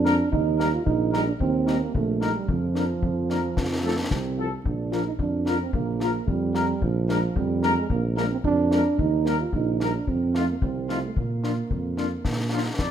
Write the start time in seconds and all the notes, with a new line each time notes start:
Already playing: F2 D4
0.05 G#3 A#3 D4 A#4, snare
0.32 D#2 D#4, concert bass drum
0.58 G3 A#3 D#4 A#4, snare
0.74 F4
0.86 A#1 D#4, concert bass drum
1.12 G3 A#3 D#4 A#4, snare
1.27 D4
1.40 D#2 C4, concert bass drum
1.67 G3 A#3 D#4 A#4, snare
1.83 A#3
1.94 A#1 A3, concert bass drum
2.20 G3 A#3 D#4 A#4, snare
2.36 G3
2.48 F2 F3, concert bass drum
2.75 F3 A#3 D4 A#4, snare
3.02 F2, concert bass drum
3.29 F3 A#3 D4 A#4, snare
3.56 F2, concert bass drum, snare
3.83 F3 A3 C4 F4 A4
3.98 A#3
4.10 C2 C4, concert bass drum, snare
4.37 F3 C4 F4 A4
4.65 A#1 D4, concert bass drum
4.92 F3 A#3 F4 A#4, snare
5.07 D#4
5.19 F2 D4, concert bass drum
5.46 F3 A#3 F4 A#4, snare
5.62 C4
5.73 A#1 A#3, concert bass drum
6.00 F3 A#3 F4 A#4, snare
6.27 F2 G3, concert bass drum
6.54 F3 A#3 F4 A#4, snare
6.81 A#1 F3, concert bass drum
7.09 G#3 A#3 D4 A#4, snare
7.36 F2 G3, concert bass drum
7.63 G#3 A#3 D4 A#4, snare
7.78 G#3
7.90 A#1 A#3, concert bass drum
8.16 G#3 A#3 D4 A#4, snare
8.31 C4
8.44 F2 D4, concert bass drum
8.71 G#3 A#3 D4 A#4, snare
8.98 D#2 D#4, concert bass drum
9.25 G3 A#3 D#4 A#4, snare
9.41 F4
9.53 A#1 D#4, concert bass drum
9.80 G3 A#3 D#4 A#4, snare
9.96 D4
10.07 F2 C4, concert bass drum
10.35 F3 A3 D#4 F4, snare
10.51 A#3
10.62 C2 C4, concert bass drum
10.89 F3 A3 D#4 F4, snare
11.05 A3
11.16 A#2 A#3, concert bass drum
11.43 F3 A#3 D4 F4, snare
11.70 F2, concert bass drum
11.97 F3 A#3 D4 F4, snare
12.25 A#2, concert bass drum, snare
12.52 F3 A#3 D4 F4
12.79 F2 D5, concert bass drum, snare